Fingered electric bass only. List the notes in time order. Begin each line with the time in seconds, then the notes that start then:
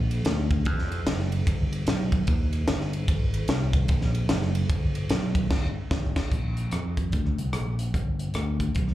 Already playing: A#1
0.26 D2
0.66 F2
1.07 F#1
1.47 G1
1.87 B1
2.28 D#2
2.68 G1
3.08 G#1
3.48 C2
3.89 A#1
4.29 F#1
4.70 G1
5.10 B1
5.51 G1
5.91 G1
6.16 G1
6.32 A#1
6.73 F2
7.13 D2
7.38 C2
7.53 A#1
7.94 G1
8.35 D2
8.76 B1